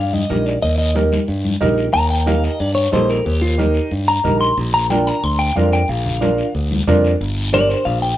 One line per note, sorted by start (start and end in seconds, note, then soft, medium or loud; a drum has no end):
0.00 0.23 G2 medium
0.00 0.14 F5 medium
0.13 0.47 D#5 medium
0.13 high conga medium
0.30 0.57 A#1 loud
0.30 0.53 D#4 medium
0.30 0.53 G4 medium
0.30 0.53 A#4 medium
0.30 high conga medium
0.30 short guiro medium
0.46 0.62 D5 medium
0.46 short guiro medium
0.62 1.16 D#2 medium
0.62 0.77 D#5 medium
0.62 high conga soft
0.62 long guiro medium
0.78 0.95 D#5 medium
0.95 1.18 D#4 medium
0.95 1.19 G4 medium
0.95 1.19 A#4 medium
0.95 high conga medium
0.95 short guiro medium
1.12 high conga medium
1.12 short guiro medium
1.28 1.55 G2 medium
1.28 high conga soft
1.28 long guiro medium
1.45 high conga medium
1.61 1.88 A#1 loud
1.61 1.84 D#4 medium
1.61 1.84 G4 medium
1.61 1.84 A#4 medium
1.61 high conga medium
1.61 low conga medium
1.61 short guiro medium
1.77 short guiro medium
1.94 2.47 D#2 loud
1.94 2.10 A#5 loud
1.94 high conga soft
1.94 long guiro medium
2.10 2.27 G5 loud
2.26 2.50 D#4 medium
2.26 2.50 G4 medium
2.26 2.50 A#4 medium
2.26 2.44 F5 medium
2.26 high conga loud
2.26 short guiro medium
2.44 2.60 D#5 medium
2.44 short guiro medium
2.60 2.86 G2 loud
2.60 2.74 D5 medium
2.60 high conga soft
2.60 long guiro medium
2.75 2.92 C#5 medium
2.92 3.19 A#1 loud
2.92 3.15 D#4 medium
2.92 3.16 G4 medium
2.92 3.16 A4 medium
2.92 3.09 C5 medium
2.92 high conga medium
2.92 short guiro medium
3.09 3.25 A#4 medium
3.09 short guiro medium
3.25 3.79 D#2 loud
3.25 3.41 G4 medium
3.25 high conga soft
3.25 long guiro medium
3.42 3.59 F4 medium
3.58 3.81 D#4 medium
3.58 3.91 D#4 loud
3.58 3.81 G4 medium
3.58 3.82 A#4 medium
3.58 high conga loud
3.58 short guiro medium
3.74 short guiro medium
3.91 4.18 G2 medium
3.91 high conga soft
3.91 long guiro medium
4.08 4.40 A#5 loud
4.24 4.51 A#1 medium
4.24 4.47 D#4 medium
4.24 4.47 G4 medium
4.24 4.47 A#4 medium
4.24 high conga medium
4.24 low conga medium
4.24 short guiro medium
4.41 4.57 C6 medium
4.41 short guiro medium
4.57 5.10 A#1 loud
4.57 high conga soft
4.57 long guiro medium
4.74 4.90 A#5 medium
4.90 5.13 D4 medium
4.90 5.14 F4 medium
4.90 5.14 A#4 medium
4.90 5.07 G5 medium
4.90 high conga loud
4.90 short guiro medium
5.07 5.24 A#5 medium
5.07 short guiro medium
5.23 5.50 D2 medium
5.23 5.39 C6 medium
5.23 high conga soft
5.23 long guiro medium
5.39 5.56 G5 medium
5.56 5.82 F2 medium
5.56 5.79 D4 medium
5.56 5.79 F4 medium
5.56 5.80 A#4 medium
5.56 5.72 F5 medium
5.56 high conga medium
5.56 short guiro medium
5.72 5.89 G5 medium
5.72 short guiro medium
5.88 6.42 A#1 loud
5.88 6.53 F5 loud
5.88 high conga soft
5.88 long guiro medium
6.06 low conga medium
6.21 6.44 D4 medium
6.21 6.44 F4 medium
6.21 6.45 A#4 medium
6.21 high conga loud
6.21 short guiro medium
6.38 short guiro medium
6.55 6.81 D2 medium
6.55 high conga soft
6.55 long guiro medium
6.71 high conga medium
6.87 7.14 F2 loud
6.87 7.10 D4 medium
6.87 7.11 F4 medium
6.87 7.11 A#4 medium
6.87 high conga medium
6.87 low conga medium
6.87 short guiro medium
7.04 short guiro medium
7.21 7.73 G1 medium
7.21 high conga soft
7.21 long guiro medium
7.53 7.76 D4 medium
7.53 7.76 G4 medium
7.53 7.76 A#4 medium
7.53 7.69 D5 loud
7.53 high conga medium
7.53 short guiro medium
7.69 7.85 C5 medium
7.69 short guiro medium
7.85 8.13 A#1 loud
7.85 8.02 F5 medium
7.85 high conga soft
7.85 long guiro medium
8.02 8.18 G5 medium